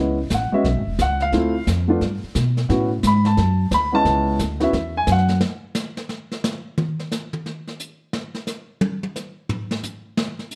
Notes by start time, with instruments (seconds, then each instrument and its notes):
Already playing: upright bass C#2, grand piano G#3 B3 C#4 E4
0.30 upright bass A1, kick, snare, hi-hat pedal
0.34 grand piano F#5
0.52 grand piano G#3 B3 C#4 F#4 E5, muted upright bass stroke
0.64 upright bass B1, brush sweep, kick, snare
0.76 upright bass G#1
0.87 upright bass E1
0.99 upright bass C#2, grand piano F#5, kick, snare, hi-hat pedal
1.20 grand piano F5, snare
1.32 upright bass D2, grand piano A3 C4 E4 F4, brush sweep, kick, snare
1.67 upright bass F2, kick, snare, hi-hat pedal
1.88 grand piano A3 B3 D4 F4
2.01 upright bass G2, brush sweep, kick, snare
2.23 muted upright bass stroke
2.35 upright bass B2, kick, snare, hi-hat pedal
2.57 snare
2.69 upright bass A2, grand piano B3 C#4 E4 F#4, brush sweep, kick, snare
3.03 upright bass G#2, kick, snare, hi-hat pedal
3.07 grand piano B5
3.25 grand piano A5, snare
3.37 upright bass F#2, brush sweep, kick, snare
3.71 upright bass D2, grand piano B5, kick, snare, hi-hat pedal
3.92 grand piano G#3 B3 C#4 E4 A5
4.05 upright bass C#2, brush sweep, kick, snare
4.39 upright bass D2, kick, snare, hi-hat pedal
4.60 grand piano B3 C#4 E4 F#4 E5, snare
4.73 upright bass E2, brush sweep, kick, snare
4.97 grand piano G#5
5.07 upright bass F#2, kick, snare, hi-hat pedal
5.12 grand piano F#5
5.18 snare
5.28 snare
5.41 snare
5.75 snare, hi-hat pedal
5.97 snare
6.09 snare
6.32 snare
6.44 snare, hi-hat pedal
6.78 mid tom
6.99 snare
7.12 snare, hi-hat pedal
7.33 mid tom
7.46 snare
7.67 snare
7.80 hi-hat pedal
8.13 snare
8.35 snare
8.47 snare, hi-hat pedal
8.81 high tom
9.03 high tom
9.16 snare, hi-hat pedal
9.49 floor tom
9.71 snare
9.83 floor tom, hi-hat pedal
10.17 snare
10.39 snare
10.51 hi-hat pedal